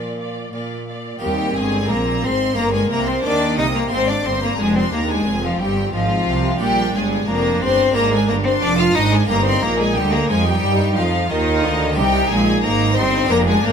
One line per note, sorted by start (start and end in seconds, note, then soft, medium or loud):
0.00 0.43 A#2 soft
0.00 0.46 A#2 soft
0.00 0.54 F3 medium
0.00 1.17 A#3 soft
0.00 1.18 D4 soft
0.00 0.51 F4 soft
0.00 0.18 D5 soft
0.00 0.18 F5 soft
0.19 0.53 D5 soft
0.19 0.51 F5 soft
0.52 1.11 A#2 soft
0.52 1.14 A#2 medium
0.52 0.86 D5 soft
0.52 0.85 F5 soft
0.86 1.21 D5 soft
0.86 1.21 F5 medium
1.19 1.53 D#2 medium
1.19 1.52 D#2 medium
1.19 1.54 D#2 medium
1.19 1.57 G3 medium
1.19 2.19 A#3 medium
1.19 2.53 C4 medium
1.19 2.52 D#4 medium
1.19 1.53 G4 medium
1.19 1.53 G5 loud
1.55 1.89 G1 medium
1.55 1.86 G2 medium
1.55 1.89 G2 medium
1.55 1.91 G#3 medium
1.55 1.89 G#4 medium
1.55 1.89 G#5 loud
1.89 2.23 A#1 medium
1.89 2.20 A#2 medium
1.89 2.23 A#2 medium
1.89 2.26 A#3 medium
1.89 2.23 A#4 medium
1.89 2.23 A#5 medium
2.23 2.57 G#1 medium
2.23 2.54 G#2 medium
2.23 2.57 G#2 medium
2.23 2.56 C4 medium
2.23 2.58 C5 medium
2.23 2.57 C6 loud
2.54 2.90 G1 medium
2.54 2.90 G2 medium
2.54 2.87 G2 medium
2.54 3.86 A#3 medium
2.54 2.73 A#3 medium
2.54 3.87 D#4 medium
2.54 2.73 A#4 medium
2.54 2.73 A#5 loud
2.58 3.24 A#3 medium
2.73 2.90 G#3 medium
2.73 2.90 G#4 medium
2.73 2.90 G#5 medium
2.89 3.24 C2 medium
2.89 3.23 C3 medium
2.89 3.21 C3 medium
2.89 3.09 A#3 medium
2.89 3.07 A#4 medium
2.89 3.07 A#5 loud
3.07 3.23 C4 medium
3.07 3.24 C5 medium
3.07 3.24 C6 medium
3.23 3.57 D#2 medium
3.23 3.54 D#3 medium
3.23 3.57 D#3 medium
3.23 3.91 A#3 medium
3.23 3.57 D4 loud
3.23 3.58 D5 loud
3.23 3.56 D6 loud
3.57 3.91 C2 medium
3.57 3.88 C3 medium
3.57 3.92 C3 medium
3.57 3.65 D#4 medium
3.57 3.75 D#5 medium
3.57 3.74 D#6 loud
3.75 3.91 A#3 medium
3.75 3.82 A#4 medium
3.75 3.92 A#5 loud
3.88 4.24 G#1 medium
3.88 4.22 G#2 medium
3.88 4.25 G#2 medium
3.88 6.55 C4 medium
3.88 4.10 C4 medium
3.88 6.55 F4 medium
3.88 4.08 C5 loud
3.88 4.08 C6 loud
3.92 4.59 C4 medium
4.08 4.27 D4 medium
4.08 4.25 D5 medium
4.08 4.26 D6 loud
4.24 4.58 G1 medium
4.24 4.58 G2 medium
4.24 4.56 G2 medium
4.24 4.42 C4 medium
4.24 4.42 C5 medium
4.24 4.42 C6 loud
4.43 4.58 A#3 medium
4.43 4.59 A#4 medium
4.43 4.59 A#5 loud
4.58 4.92 F1 medium
4.58 4.92 F2 medium
4.58 4.90 F2 medium
4.58 4.77 G#3 medium
4.58 5.27 D4 medium
4.58 4.76 G#4 medium
4.58 4.76 G#5 loud
4.76 4.92 C4 medium
4.76 4.83 C5 medium
4.76 4.93 C6 medium
4.92 5.26 D#2 medium
4.92 5.23 D#2 medium
4.92 4.99 A#3 medium
4.92 5.10 A#4 medium
4.92 5.10 A#5 loud
5.09 5.42 G#3 medium
5.09 5.43 G#4 medium
5.09 5.43 G#5 loud
5.26 5.59 F1 medium
5.26 5.57 F2 medium
5.26 5.60 F2 medium
5.26 5.93 C4 medium
5.43 5.62 F3 medium
5.43 5.60 F4 medium
5.43 5.61 F5 medium
5.60 5.93 G1 medium
5.60 5.90 G2 medium
5.60 5.93 G2 medium
5.60 5.93 G3 medium
5.60 5.94 G4 medium
5.60 5.93 G5 medium
5.92 6.26 G#1 medium
5.92 6.24 G#2 medium
5.92 6.27 G#2 medium
5.92 6.62 F3 medium
5.92 6.60 C4 medium
5.92 6.59 F4 medium
5.92 6.60 F5 loud
6.27 6.60 C2 medium
6.27 6.58 C3 medium
6.27 6.61 C3 medium
6.58 6.93 A#1 medium
6.58 6.94 A#2 medium
6.58 6.91 A#2 medium
6.58 6.95 G3 medium
6.58 7.90 D4 medium
6.58 7.26 D4 medium
6.58 7.91 F4 medium
6.58 6.94 G4 loud
6.58 6.94 G5 loud
6.94 7.27 G1 medium
6.94 7.27 G2 medium
6.94 7.25 G2 medium
6.94 7.29 G#3 medium
6.94 7.28 G#4 medium
6.94 7.28 G#5 medium
7.27 7.61 F1 medium
7.27 7.61 F2 medium
7.27 7.59 F2 medium
7.27 7.63 A#3 medium
7.27 7.93 D4 medium
7.27 7.61 A#4 medium
7.27 7.62 A#5 loud
7.61 7.94 G1 medium
7.61 7.94 G2 medium
7.61 7.92 G2 medium
7.61 7.96 C4 loud
7.61 7.95 C5 loud
7.61 7.95 C6 loud
7.91 8.28 G#1 medium
7.91 8.28 G#2 medium
7.91 9.23 A#3 medium
7.91 8.13 A#3 loud
7.91 9.24 D4 medium
7.91 9.26 D4 medium
7.91 9.25 F4 medium
7.91 8.11 A#5 loud
7.95 8.26 G#2 medium
7.95 8.12 A#4 medium
8.11 8.27 G#3 medium
8.11 8.29 G#4 medium
8.11 8.29 G#5 loud
8.28 8.62 G1 medium
8.28 8.59 G2 medium
8.28 8.62 G2 medium
8.28 8.35 A#3 medium
8.28 8.46 A#4 medium
8.28 8.35 A#5 loud
8.44 8.51 C4 medium
8.44 8.52 C5 medium
8.44 8.63 C6 loud
8.61 8.95 F1 medium
8.61 8.95 F2 medium
8.61 8.93 F2 medium
8.61 8.78 D4 loud
8.61 8.69 D5 loud
8.61 8.79 D6 loud
8.78 8.96 F4 medium
8.78 8.86 F5 medium
8.78 8.96 F6 loud
8.94 9.29 G#1 medium
8.94 9.28 G#2 medium
8.94 9.26 G#2 medium
8.94 9.13 D#4 medium
8.94 9.11 D#5 medium
8.94 9.12 D#6 loud
9.12 9.28 G#3 medium
9.12 9.29 G#4 medium
9.12 9.30 G#5 loud
9.25 9.62 G2 medium
9.25 11.90 A#3 medium
9.25 9.45 A#3 medium
9.25 11.91 D#4 medium
9.25 11.25 D#4 medium
9.25 11.92 G4 medium
9.25 9.45 A#4 loud
9.25 9.45 A#5 loud
9.29 9.62 G1 medium
9.29 9.60 G2 medium
9.45 9.64 C4 medium
9.45 9.62 C5 medium
9.45 9.62 C6 loud
9.61 9.96 A#1 medium
9.61 9.95 A#2 medium
9.61 9.93 A#2 medium
9.61 9.81 A#3 medium
9.61 9.78 A#4 loud
9.61 9.79 A#5 loud
9.79 9.95 G#3 medium
9.79 9.96 G#4 medium
9.79 9.96 G#5 loud
9.94 10.30 D2 medium
9.94 10.29 D3 medium
9.94 10.26 D3 medium
9.94 10.13 G3 loud
9.94 10.13 G4 loud
9.94 10.12 G5 loud
10.12 10.30 A#3 medium
10.12 10.30 A#4 medium
10.12 10.29 A#5 loud
10.28 10.62 F2 medium
10.28 10.62 F3 medium
10.28 10.60 F3 medium
10.28 10.45 G#3 loud
10.28 10.47 G#4 loud
10.28 10.45 G#5 loud
10.44 10.97 G3 medium
10.44 10.96 G4 medium
10.44 10.96 G5 loud
10.62 10.96 G2 medium
10.62 10.95 G3 medium
10.62 10.93 G3 medium
10.95 11.30 F2 medium
10.95 11.29 F3 medium
10.95 11.30 F3 medium
10.95 11.27 F3 medium
10.95 11.31 F4 medium
10.95 11.28 F5 loud
11.29 11.63 D#2 medium
11.29 11.60 D#3 medium
11.29 11.98 D#3 medium
11.29 11.63 D#3 medium
11.29 11.96 D#4 loud
11.29 11.96 F4 medium
11.29 11.96 D#5 loud
11.63 11.96 D2 medium
11.63 11.97 D3 medium
11.63 11.93 D3 medium
11.92 12.29 C2 loud
11.92 13.23 C4 medium
11.92 13.25 D#4 medium
11.92 13.25 G4 medium
11.96 12.30 C3 loud
11.96 12.27 C3 medium
11.96 12.30 G3 medium
11.96 12.62 D#4 medium
11.96 12.30 G4 loud
11.96 12.29 G5 loud
12.30 12.63 A#1 medium
12.30 12.60 A#2 medium
12.30 12.63 A#2 medium
12.30 12.63 G#3 medium
12.30 12.63 G#4 loud
12.30 12.63 G#5 loud
12.63 12.96 G#1 medium
12.63 12.96 G#2 medium
12.63 12.93 G#2 medium
12.63 12.96 A#3 loud
12.63 13.29 D#4 medium
12.63 12.97 A#4 loud
12.63 12.96 A#5 loud
12.95 13.30 G1 medium
12.95 13.30 G2 medium
12.95 13.27 G2 medium
12.95 13.32 C4 loud
12.95 13.29 C5 loud
12.95 13.30 C6 loud
13.25 13.72 C4 medium
13.25 13.72 D#4 medium
13.25 13.72 F4 medium
13.29 13.63 F1 loud
13.29 13.60 F2 medium
13.29 13.63 F2 medium
13.29 13.47 A#3 loud
13.29 13.72 D4 medium
13.29 13.47 A#4 loud
13.29 13.37 A#5 loud
13.47 13.64 G#3 medium
13.47 13.63 G#4 medium
13.47 13.64 G#5 loud
13.63 13.72 G#1 medium
13.63 13.72 G#2 medium
13.63 13.72 A#3 loud
13.63 13.72 A#4 loud
13.63 13.72 A#5 loud